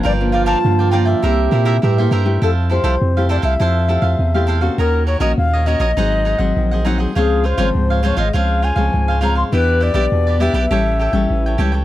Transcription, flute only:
0.06 0.12 D5 loud
0.32 0.46 F5 medium
0.46 0.89 A5 loud
0.91 0.97 G5 medium
1.05 2.07 E5 medium
2.43 2.50 A4 medium
2.71 3.27 C5 medium
3.31 3.37 D5 medium
3.45 4.45 E5 medium
4.80 5.06 A#4 medium
5.07 5.20 C#5 medium
5.20 5.36 D#5 medium
5.38 5.68 F5 loud
5.67 6.86 D#5 medium
7.17 7.47 G#4 medium
7.46 8.05 C5 medium
8.05 8.18 C#5 medium
8.19 8.33 D#5 medium
8.36 8.66 F5 medium
8.64 9.23 G#5 medium
9.23 9.37 A#5 medium
9.37 9.43 C6 loud
9.54 9.85 B4 medium
9.83 10.43 D5 medium
10.41 11.60 E5 medium

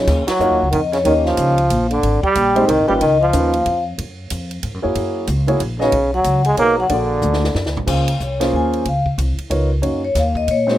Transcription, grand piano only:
0.40 0.58 A#3 medium
0.40 0.58 D#4 medium
0.40 0.58 F4 medium
0.40 0.58 F#4 medium
0.40 0.59 C#5 medium
1.05 1.54 A#3 medium
1.05 1.54 C#4 medium
1.05 1.54 D#4 medium
1.05 1.54 G4 medium
1.05 1.54 C#5 medium
2.55 2.66 G#3 medium
2.55 2.66 C4 medium
2.55 2.67 D#4 medium
2.55 2.67 G4 medium
2.55 2.67 C5 medium
2.87 2.99 A#3 medium
2.87 2.99 C#4 medium
2.87 2.99 D#4 medium
2.87 2.99 F4 medium
2.87 2.99 B4 medium
3.33 3.51 A#3 medium
3.33 3.51 C#4 medium
3.33 3.51 D#4 medium
3.33 3.51 F4 medium
3.33 3.51 B4 medium
4.82 5.25 A#3 medium
4.82 5.25 E4 medium
4.82 5.25 F#4 medium
4.82 5.25 G#4 medium
4.82 5.25 C#5 medium
5.47 5.59 A#3 medium
5.47 5.59 E4 medium
5.47 5.59 F#4 medium
5.47 5.59 G#4 medium
5.47 5.59 C#5 medium
5.79 5.91 B3 medium
5.79 5.91 D#4 medium
5.79 5.91 F#4 medium
5.79 5.91 G#4 medium
5.79 5.91 D#5 medium
6.57 6.76 B3 medium
6.57 6.75 D#4 medium
6.57 6.76 F#4 medium
6.57 6.76 G#4 medium
6.57 6.76 C#5 medium
6.89 7.38 A#3 medium
6.89 7.38 D4 medium
6.89 7.38 F#4 medium
6.89 7.39 G#4 medium
6.89 7.39 D5 medium
7.86 8.05 A#3 medium
7.86 8.05 C#4 medium
7.86 8.05 F4 medium
7.86 8.05 G#4 medium
7.86 8.05 C5 medium
8.40 8.82 A#3 medium
8.40 8.82 C#4 medium
8.40 8.82 F4 medium
8.40 8.83 G#4 medium
8.40 8.83 C5 medium
9.50 9.68 B3 medium
9.50 9.68 D#4 medium
9.50 9.68 F4 medium
9.50 9.68 A#4 medium
9.50 9.68 C#5 medium
9.82 10.00 A#3 medium
9.82 10.00 C#4 medium
9.82 10.00 D#4 medium
9.82 10.00 F#4 medium
9.82 10.00 C#5 medium
10.67 10.78 G#3 medium
10.67 10.78 C4 medium
10.67 10.78 D#4 medium
10.67 10.78 F#4 medium
10.67 10.78 C5 medium

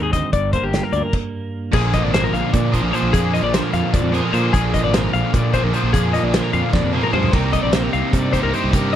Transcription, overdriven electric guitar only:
1.72 2.75 A#2 medium
1.72 2.72 D3 medium
1.72 2.74 F3 medium
1.72 2.73 A#3 medium
1.72 2.72 D4 medium
1.72 2.72 G#4 medium
2.72 2.91 A#2 medium
2.72 2.92 D3 medium
2.72 2.93 F3 medium
2.72 2.93 A#3 medium
2.72 2.92 D4 medium
2.72 2.94 G#4 medium
2.92 3.11 A#2 medium
2.92 3.11 D3 medium
2.92 3.12 F3 medium
2.92 3.13 A#3 medium
2.92 3.13 D4 medium
2.92 3.14 G#4 medium
3.11 4.11 A#2 medium
3.11 4.11 D3 medium
3.11 4.12 F3 medium
3.11 4.13 A#3 medium
3.11 4.13 D4 loud
3.11 4.14 G#4 medium
4.11 4.34 A#2 medium
4.11 4.32 D3 medium
4.11 4.33 F3 medium
4.11 4.33 A#3 medium
4.11 4.31 D4 medium
4.11 4.32 G#4 medium
4.32 4.52 A#2 medium
4.32 4.52 D3 medium
4.32 4.53 F3 medium
4.32 4.54 A#3 medium
4.32 4.52 D4 medium
4.32 4.54 G#4 medium
4.52 5.52 A#2 medium
4.52 5.52 D3 loud
4.52 5.52 F3 medium
4.52 5.54 A#3 medium
4.52 5.52 D4 medium
4.52 5.52 G#4 loud
5.53 5.71 A#2 medium
5.53 5.72 D3 medium
5.53 5.72 F3 medium
5.53 5.74 A#3 medium
5.53 5.73 D4 medium
5.53 5.72 G#4 medium
5.72 5.92 A#2 medium
5.72 5.92 D3 medium
5.72 5.92 F3 medium
5.72 5.94 A#3 medium
5.72 5.93 D4 medium
5.72 5.93 G#4 medium
5.93 6.91 A#2 medium
5.93 6.92 D3 medium
5.93 6.92 F3 loud
5.93 6.94 A#3 medium
5.93 6.93 D4 loud
5.93 6.93 G#4 loud
6.92 7.12 A#2 medium
6.92 7.12 D3 medium
6.92 7.12 F3 medium
6.92 7.14 A#3 medium
6.92 7.12 D4 medium
6.92 7.11 G#4 medium
7.13 7.33 A#2 medium
7.13 7.32 D3 medium
7.13 7.33 F3 medium
7.13 7.33 A#3 medium
7.13 7.32 D4 medium
7.13 7.32 G#4 medium
7.32 8.32 C3 medium
7.32 8.32 G3 medium
7.32 8.34 C4 medium
7.32 8.33 D#4 medium
7.32 8.32 G4 medium
8.33 8.52 C3 medium
8.33 8.53 G3 medium
8.33 8.54 C4 medium
8.33 8.54 D#4 medium
8.33 8.52 G4 medium
8.53 8.72 C3 medium
8.53 8.72 G3 medium
8.53 8.74 C4 medium
8.53 8.74 D#4 medium
8.53 8.73 G4 medium
8.73 8.96 C3 medium
8.73 8.96 G3 medium
8.73 8.96 C4 medium
8.73 8.96 D#4 medium
8.73 8.96 G4 medium

